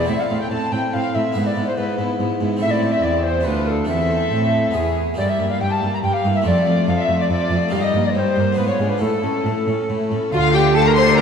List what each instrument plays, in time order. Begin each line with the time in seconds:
Already playing: recorder D5
0.04 harpsichord C4 E4 A4, violin section E4
0.09 cello section A2, harpsichord A2, viola section C4, recorder E5, violin section E5
0.20 violin section F5, recorder F5 F#5
0.29 cello section A2, harpsichord A2, viola section C4, violin section E4
0.41 recorder G5, violin section G5
0.51 cello section A2, harpsichord A2, viola section C4, violin section E4 A5, recorder A5
0.72 cello section A2, harpsichord A2, viola section C4, violin section E4 G5, recorder G5
0.92 harpsichord A2, cello section A2, viola section C4, violin section E4 F5, recorder F5
1.14 cello section A2, harpsichord A2, viola section C4, violin section E4 E5, recorder E5
1.32 cello section G#2, harpsichord B3 E4 B4, viola section B3, violin section E4
1.37 harpsichord G#2
1.46 violin section D5, recorder D5
1.56 cello section G#2, harpsichord G#2, viola section B3, violin section E4
1.67 recorder C5, violin section C5
1.77 cello section G#2, harpsichord G#2, viola section B3, violin section E4 B4, recorder B4
1.98 harpsichord G#2, cello section G#2, viola section B3, violin section E4
2.19 cello section G#2, harpsichord G#2, viola section B3, violin section E4
2.41 harpsichord G#2, cello section G#2, viola section B3, violin section E4
2.57 harpsichord C4 E4 A4
2.61 harpsichord A2, cello section A2, viola section C4, violin section E4 E5, recorder E5
2.71 recorder D5, violin section D5
2.92 recorder E5, violin section E5
3.02 cello section E2, harpsichord E2, recorder D5, violin section D5
3.23 recorder C5, violin section C5
3.41 harpsichord D4 F4 A4
3.45 cello section D2, harpsichord D2, viola section D4, violin section F4 B4, recorder B4
3.67 violin section A4, recorder A#4
3.71 recorder A4
3.85 harpsichord C4 E4 A4
3.89 harpsichord E2, cello section E2, viola section C4, violin section A4 E5, recorder E5
4.32 harpsichord A2, cello section A2
4.71 harpsichord B3 E4 G#4
4.75 cello section E2, harpsichord E2, viola section B3, violin section G#4
5.14 cello section G2, harpsichord A#3 E4 G4, recorder D5
5.18 harpsichord G2, viola section G3, violin section G4 D5
5.29 recorder E5, violin section E5
5.39 cello section G2, harpsichord G2, viola section A#3, violin section E4
5.51 violin section F5, recorder F5
5.61 cello section G2, harpsichord G2, viola section G3, violin section G4 G5, recorder G5
5.72 recorder A5, violin section A5
5.83 cello section G2, harpsichord G2, viola section A#3, violin section E4
5.94 recorder A#5, violin section A#5
6.03 cello section G2, harpsichord G2, viola section G3, violin section G4 G5, recorder G5
6.13 recorder F5, violin section F5
6.24 cello section G2, harpsichord G2, viola section A#3, violin section E4
6.35 recorder E5, violin section E5
6.42 cello section F2, harpsichord A3 F4 A4
6.46 harpsichord F2, viola section F3, violin section A4 D5, recorder D5
6.66 cello section F2, harpsichord F2, viola section A3, violin section F4
6.87 cello section F2, harpsichord F2, viola section F3, violin section A4 F5, recorder F5
6.99 violin section E5, recorder F5
7.04 recorder E5
7.08 cello section F2, harpsichord F2, viola section A3, violin section F4
7.20 violin section D5, recorder D5
7.30 cello section F2, harpsichord F2, viola section F3, violin section A4 D5, recorder D5
7.51 cello section F2, harpsichord F2, viola section A3, violin section F4
7.69 cello section G2, harpsichord A#3 D#4 G4, violin section F5
7.73 harpsichord G2, viola section G3, violin section G4, recorder F5
7.83 violin section D#5, recorder D#5
7.93 cello section G2, harpsichord G2, viola section A#3, violin section A#4
8.04 violin section D5, recorder D5
8.14 cello section G2, harpsichord G2, viola section G3, violin section G4 C5, recorder C#5
8.19 recorder C5
8.36 harpsichord G2, cello section G2, viola section A#3, violin section A#4
8.52 harpsichord B3 D4 F4, violin section F4
8.57 harpsichord G#2, cello section G#2, viola section B3, recorder B4, violin section B4
8.68 violin section C#5, recorder C#5
8.79 cello section G#2, harpsichord G#2, viola section D4, violin section G#4
8.89 recorder B4, violin section B4
8.98 cello section A2, harpsichord C#4 E4, violin section E4 A4, recorder A4
9.02 harpsichord A2, viola section A3
9.23 cello section A2, harpsichord A2, viola section C#4, violin section A4
9.45 cello section A2, harpsichord A2, viola section A3, violin section E4
9.67 cello section A2, harpsichord A2, viola section C#4, violin section A4
9.89 cello section A2, harpsichord A2, viola section A3, violin section E4
10.11 cello section A2, harpsichord A2, viola section C#4, violin section A4
10.32 double bass section D2, harpsichord D3, cello section D3, viola section A3, violin section F4 F5, recorder F#4
10.38 recorder F4
10.53 violin section G4 G5, recorder G4, harpsichord D5
10.75 viola section A3, violin section A4 A5, harpsichord A4, recorder A4
10.85 violin section A#4 A#5, recorder A#4
10.95 violin section C5 C6, recorder C5, harpsichord D5
11.16 harpsichord F4, violin section A#4 A#5, recorder A#4